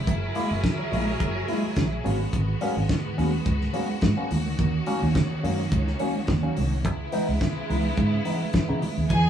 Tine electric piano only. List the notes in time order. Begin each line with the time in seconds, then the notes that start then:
0.08 F#3
0.35 G#3 A#3 E4
0.51 A#3 E4
0.64 A#3 E4
0.79 F#3
0.92 G#3 A#3 E4
1.21 A#3 E4
1.35 F#3
1.48 G#3 A#3 E4
1.77 F#3
2.04 F#3 A#3 B3 C#4
2.20 B3 C#4
2.33 G#2 D#3
2.61 F#3 A#3 B3 C#4
2.76 B3 C#4
2.89 B3 C#4
3.04 G#2 D#3
3.17 F#3 A#3 B3 C#4
3.46 B3 C#4
3.61 G#2 D#3
3.73 F#3 A#3 B3 C#4
4.17 F#3 A#3 B3 C#4
4.46 D#3
4.58 D#3
4.86 F#3 A#3 C#4
5.02 A#3 C#4
5.15 A#3 C#4
5.30 D#3
5.43 F#3 A#3 C#4
5.71 A#3 C#4
5.86 D#3
5.99 F#3 A#3 C#4
6.42 F#3 A#3 C#4
6.71 D#3
6.84 C#3
7.12 E3 B3 D#4
7.28 B3 D#4
7.41 B3 D#4
7.56 C#3
7.69 E3 B3 D#4
8.12 C#3
8.25 E3 B3 D#4
8.68 E3 B3 D#4
8.97 C#3
9.10 E3
9.25 G#3 D#4